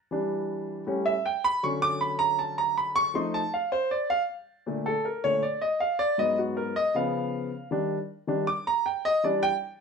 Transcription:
grand piano
0.11 E3 G3 D4
0.87 A2 G3 C#4
1.06 E5
1.26 G5
1.44 B5
1.63 D3 F#3 C#4 C#6
1.82 D6
2.01 B5
2.19 A#5
2.39 A5
2.58 A#5
2.78 B5
2.96 C#6
3.14 F3 A3 D#4 C6
3.34 A5
3.54 F5
3.72 C5
3.91 D5
4.10 F5
4.66 A#2 D3 A3
4.86 A4
5.05 A#4
5.24 A#2 D3 A3 C#5
5.43 D5
5.62 D#5
5.80 F5
5.99 D5
6.18 G#2 F#3 B3 D#5
6.38 F#4
6.57 A#4
6.76 D#5
6.95 C#3 F3 B3 F5
7.71 D#3 G3 D4
8.27 D#3 G3 D4
8.47 D6
8.67 A#5
8.86 G5
9.05 D#5
9.24 E3 G3 D4 D5
9.43 G5

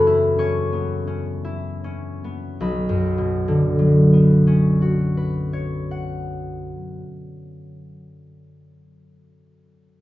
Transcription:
harp
Already playing: F#2 C#3 E3 B3 C#4 A4 B4 C#5 E5 B5 C#6 E6
0.07 E4
0.38 C#4 C#5 C#6
0.73 B3
1.07 C#4
1.44 E4
1.84 C#4
2.24 B3
2.60 B1 B5
2.89 F#2
3.18 B2
3.48 D3
3.79 F#3
4.13 B3
4.47 C#4
4.82 F#4
5.17 B4
5.53 C#5
5.91 F#5

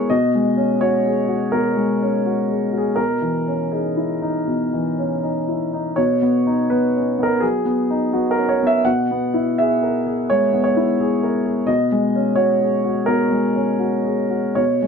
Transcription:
grand piano
Already playing: G#3 B3 E4 G#4 A#4 C#5
0.10 B2 D#5
0.35 G#3
0.57 C#4
0.81 F#4 C#5
1.06 G#4
1.29 F#4
1.52 B2 A#4
1.77 G#3
2.02 C#4
2.26 F#4
2.49 G#4
2.73 F#4
2.78 G#4
2.96 B2 A#4
3.21 E3
3.48 C#4
3.72 D#4 G#4
3.97 E4
4.22 D#4
4.47 B2
4.73 E3
4.99 C#4
5.23 D#4
5.48 E4
5.73 D#4
5.96 B2 C#5
6.22 B3
6.47 D#4
6.70 B3 B4
6.96 C#4
7.19 B3
7.23 A#4
7.40 F#3 G#4
7.65 B3
7.91 D#4
8.13 B3 F#4
8.31 A#4
8.38 C#4
8.49 C#5
8.62 B3
8.67 E5
8.85 B2 F#5
9.11 B3
9.34 E4
9.58 G#4 E5
9.83 A#4
10.07 G#4
10.30 G#3 C#5
10.53 B3
10.64 C#5
10.77 E4
11.01 G#4
11.23 A#4
11.46 G#4
11.67 B2 D#5
11.92 G#3
12.15 C#4
12.36 F#4 C#5
12.61 G#4
12.84 F#4
13.06 B2 A#4
13.31 G#3
13.56 C#4
13.79 F#4
14.05 G#4
14.30 F#4
14.55 B2 C#5
14.82 G#3

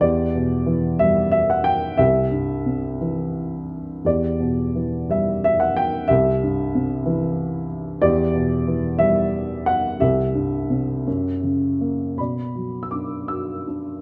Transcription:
upright piano
0.01 E2 G4 D5
0.35 B2
0.66 E3
0.99 G3 E5
1.32 E5
1.50 F#5
1.64 G5
1.97 C2 G4 E5
2.31 G2
2.66 C3
3.01 E3
4.05 E2 G4 D5
4.40 B2
4.75 E3
5.10 G3 E5
5.44 E5
5.60 F#5
5.77 G5
6.08 C2 G4 E5
6.43 G2
6.75 C3
7.06 E3
8.02 E2 G4 D5
8.35 B2
8.68 E3
8.99 G3 E5
9.66 F#5
10.00 C2 G4 E5
10.35 G2
10.70 C3
11.07 F#2
11.43 C#3
11.81 A#3
12.17 B2 D5 B5
12.55 F#3
12.83 E6
12.91 D4 D6
13.28 F#4 E6
13.68 D4

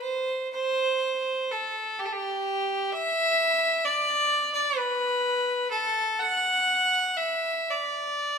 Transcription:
fiddle
0.02 C5
0.53 C5
1.51 A4
1.99 G4
2.06 A4
2.12 G4
2.93 E5
3.85 D5
4.54 D5
4.78 B4
5.70 A4
6.19 F#5
7.17 E5
7.70 D5

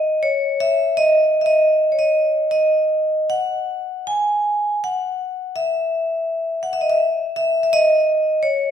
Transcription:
vibraphone
Already playing: D#5
0.23 C#5
0.60 E5
0.97 D#5
1.41 E5
1.46 D#5
1.92 C#5
1.99 D#5
2.51 D#5
3.30 F#5
4.07 G#5
4.84 F#5
5.56 E5
6.63 F#5
6.73 E5
6.81 D#5
6.90 E5
7.36 E5
7.63 E5
7.73 D#5
8.43 C#5

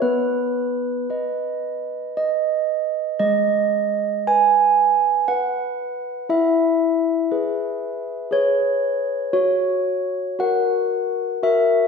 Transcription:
handbells
0.02 B3 B4
1.10 B4 D#5
2.17 D#5
3.20 G#3 D#5
4.27 B4 G#5
5.28 B4 F#5
6.29 E4 E5
7.31 G#4 B4
8.31 G#4 B4 C#5
9.33 F#4 C#5
10.39 F#4 A#4 F#5
11.43 F#4 A#4 E5

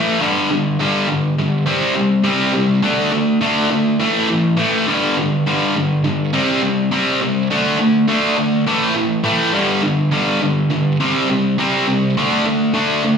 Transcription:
distorted electric guitar
Already playing: A2 E3 A3
0.20 G2 D3 G3
0.50 G2 D3
0.80 G2 D3 G3
1.08 G2 D3
1.38 G2 D3
1.66 C3 G3 C4
1.95 C3 G3
2.24 C3 G3 C4
2.53 C3 G3
2.82 D3 A3 D4
3.12 D3 A3
3.41 D3 A3 D4
3.70 D3 A3
3.99 A2 E3 A3
4.29 A2 E3
4.57 A2 E3 A3
4.87 G2 D3 G3
5.17 G2 D3
5.46 G2 D3 G3
5.76 G2 D3
6.04 G2 D3
6.33 C3 G3 C4
6.63 C3 G3
6.91 C3 G3 C4
7.22 C3 G3
7.51 D3 A3 D4
7.79 D3 A3
8.08 D3 A3 D4
8.37 D3 A3
8.66 A2 E3 A3
8.95 A2 E3
9.24 A2 E3 A3
9.53 G2 D3 G3
9.83 G2 D3
10.12 G2 D3 G3
10.42 G2 D3
10.70 G2 D3
11.00 C3 G3 C4
11.30 C3 G3
11.58 C3 G3 C4
11.88 C3 G3
12.17 D3 A3 D4
12.46 D3 A3
12.73 D3 A3 D4
13.04 D3 A3

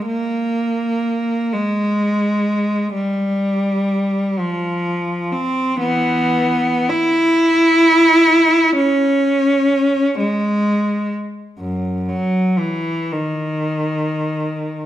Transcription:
cello
0.06 A#3
1.53 G#3
2.94 G3
4.39 F3
5.32 C4
5.80 E3 B3
6.89 E4
8.76 C#4
10.20 G#3
11.60 F#2
12.08 F#3
12.58 E3
13.12 D#3

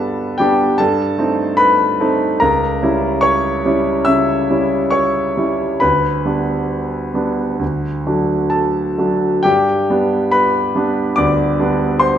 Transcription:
grand piano
Already playing: G2 G3 B3 D4 A4 B4 A5 B5
0.38 G3 B3 D4 G4 G5
0.78 G2 A4 A5
1.18 A3 C4 D#4
1.57 B4 B5
2.00 A3 C4 D#4
2.40 C#2 A#4 A#5
2.83 G3 C#4 E4
3.21 C#5 C#6
3.65 G3 C#4 E4
4.05 C#3 E5 E6
4.50 G3 C#4 E4
4.91 C#5 C#6
5.37 G3 C#4 E4
5.80 D2 B4 B5
6.25 G3 B3 D4
7.14 G3 B3 D4
7.59 D2
8.07 F#3 A3 D4
8.50 A4 A5
8.98 F#3 A3 D4
9.43 G2 G4 G5
9.90 G3 B3 D4
10.31 B4 B5
10.76 G3 B3 D4
11.16 D2 D5 D6
11.60 G3 B3 D4
11.99 C5 C6

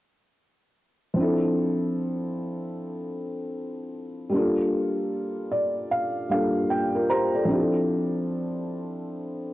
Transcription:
felt piano
1.14 F3 C4
1.18 D4 E4
1.22 A4
4.30 G3 A#3
4.34 D4 F4
4.38 A4
5.51 D5
5.91 F5
6.29 G3 A#3 D4 F4 F5
6.33 A4
6.70 G5
6.95 F4 A#4
7.10 G4 C5 A#5
7.35 A4 D5
7.45 F3 C4
7.49 D4 E4
7.53 G4
7.60 A4

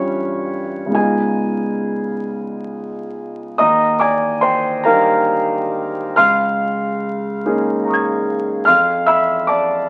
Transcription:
grand piano
Already playing: G2 G3 C#4 F4 G4 B4 C#5 B5 C#6
0.86 C#2 G#3
0.90 B3 D#4 F4
0.95 G#4 G#5
3.58 D#2 D#5 A#5 D#6
4.00 D5 G#5 D6
4.41 C5 G5 C6
4.84 G3 D4 D#4 G4 A#4 F5 A#5
6.16 C#2 F5 C6 F6
7.45 A#3 C#4 D#4 G#4
7.84 A#5 C#6
7.90 D#6 G#6
8.65 F2 F5 C6 F6
9.06 E5 B5 E6
9.47 D5 A5 D6

